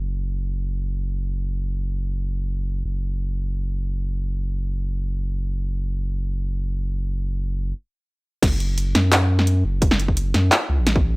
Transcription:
Already playing: F#1
2.85 F#1
8.43 F#1, kick, snare, closed hi-hat, crash
8.60 closed hi-hat
8.78 closed hi-hat
8.95 F#2, snare, closed hi-hat
9.12 clap, closed hi-hat
9.39 snare
9.47 closed hi-hat
9.65 F#1
9.82 kick, closed hi-hat
9.91 snare
9.99 closed hi-hat
10.08 kick
10.17 closed hi-hat
10.34 F#2, snare, closed hi-hat
10.52 clap, closed hi-hat
10.69 C#2
10.79 A1
10.87 snare, closed hi-hat
10.96 kick

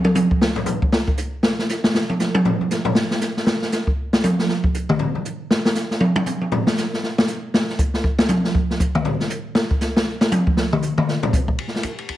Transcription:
0.05 high tom
0.15 hi-hat pedal, high tom
0.31 kick
0.41 snare
0.56 floor tom
0.66 floor tom, hi-hat pedal
0.82 kick
0.92 snare
1.08 kick
1.17 hi-hat pedal
1.43 snare
1.59 snare
1.69 snare, hi-hat pedal
1.84 snare
1.94 snare
2.09 high tom
2.20 snare, hi-hat pedal
2.35 high tom
2.45 floor tom
2.61 floor tom
2.71 snare, hi-hat pedal
2.85 floor tom
2.95 snare
3.11 snare
3.21 snare, hi-hat pedal
3.37 snare
3.47 snare
3.62 snare
3.72 snare, hi-hat pedal
3.87 kick
4.13 snare
4.23 hi-hat pedal, high tom
4.39 snare
4.48 snare
4.64 kick
4.74 hi-hat pedal
4.89 mid tom
4.99 floor tom
5.15 floor tom
5.25 hi-hat pedal
5.51 snare
5.65 snare
5.75 snare, hi-hat pedal
5.91 snare
6.00 high tom
6.16 high tom
6.26 hi-hat pedal, high tom
6.41 high tom
6.52 floor tom
6.67 snare
6.77 snare, hi-hat pedal
6.93 snare
7.03 snare
7.18 snare
7.28 hi-hat pedal
7.54 snare
7.69 snare
7.79 kick, hi-hat pedal
7.94 snare
8.04 kick
8.19 snare
8.28 hi-hat pedal, high tom
8.44 snare
8.55 kick
8.70 snare
8.80 kick, hi-hat pedal
8.95 mid tom
9.05 floor tom
9.20 snare
9.30 hi-hat pedal
9.55 snare
9.71 kick
9.81 snare, hi-hat pedal
9.96 snare
10.21 snare
10.31 hi-hat pedal, high tom
10.47 kick
10.57 snare
10.73 mid tom
10.82 hi-hat pedal
10.98 mid tom
11.08 snare
11.23 floor tom
11.33 kick, hi-hat pedal
11.48 kick
11.58 kick, ride
11.68 snare
11.75 snare
11.83 kick, hi-hat pedal, ride
11.98 ride
12.09 kick, ride

